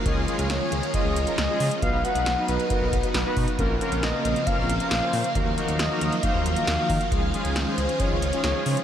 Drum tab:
HH |x-xxx-xxx-xxx-ox|x-xxx-xxx-xxx-ox|x-xxx-xxx-xxx-ox|x-xxx-xxx-xxx-ox|
SD |----o-------o---|----o-------o---|----o-------o---|----o-------o---|
BD |o-------o-------|o-------o-o---o-|o-------o-------|o-------o-----o-|

HH |x-xxx-xxx-xxx-ox|
SD |----o-------o---|
BD |o-------o-------|